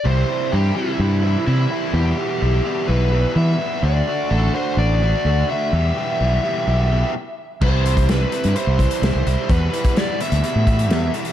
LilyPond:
<<
  \new Staff \with { instrumentName = "Lead electric guitar" } { \time 4/4 \key c \lydian \tempo 4 = 127 c''4 g'8 e'4. e'4 | g'2 b'4 e''4 | d''4 a'8 c''8 d''4. e''8~ | e''2. r4 |
c''4 b'4 c''4 c''4 | b'4 d''8 e''2 r8 | }
  \new Staff \with { instrumentName = "Overdriven electric guitar" } { \clef bass \time 4/4 \key c \lydian <c e g c' e'>8 <g c' e'>8 <e g c' e'>8 <c e g c' e'>8 <e g c' e'>8 <c e g c' e'>8 <e g c' e'>8 <g c' e'>8 | <e, b, e g b e'>8 <e g b e'>8 <e g b e'>8 <e, b, e g b e'>8 <e g b e'>8 <e, b, e g b e'>8 <e g b e'>8 <e g b e'>8 | <d a d' fis'>8 <a d' fis'>8 <d a d' fis'>8 <d a d' fis'>8 <d a d' fis'>8 <d a d' fis'>8 <d a d' fis'>8 <a d' fis'>8 | <e, b, e g b g'>8 <e g b g'>8 <e g b g'>8 <e, b, e g b g'>8 <e g b g'>8 <e, b, e g b g'>8 r4 |
<c e g c' e'>8 <c e g c' e'>8 <c e g c' e'>8 <c e g c' e'>8 <c e g c' e'>8 <c e g c' e'>8 <c e g c' e'>8 <c e g c' e'>8 | <e, b, e g b e'>8 <e, b, e g b e'>8 <e, b, e g b e'>8 <e, b, e g b e'>8 <e, b, e g b e'>8 <e, b, e g b e'>8 <e, b, e g b e'>8 <e, b, e g b e'>8 | }
  \new Staff \with { instrumentName = "Fingered electric bass" } { \clef bass \time 4/4 \key c \lydian c,8 r8 g,8 r8 g,4 c8 r8 | e,8 r8 b,,8 r8 b,,4 e8 r8 | d,8 r8 a,,8 r8 a,,4 d,8 r8 | e,8 r8 b,,8 r8 b,,4 r4 |
c,4.~ c,16 g,16 r16 c,8 r16 c,16 c,16 c,16 r16 | e,8 r4 r16 d,16 r16 a,8. e,8 r8 | }
  \new DrumStaff \with { instrumentName = "Drums" } \drummode { \time 4/4 r4 r4 r4 r4 | r4 r4 r4 r4 | r4 r4 r4 r4 | r4 r4 r4 r4 |
<cymc bd>8 hh16 <hh bd>16 <hh sn>8 hh16 <hh sn>16 hh8 <hh bd>16 hh16 <hh sn>8 hh8 | <hh bd>8 hh16 <hh bd>16 <hh sn>8 hh16 hh16 hh8 <hh bd>16 hh16 <hh sn>8 hh16 hh16 | }
>>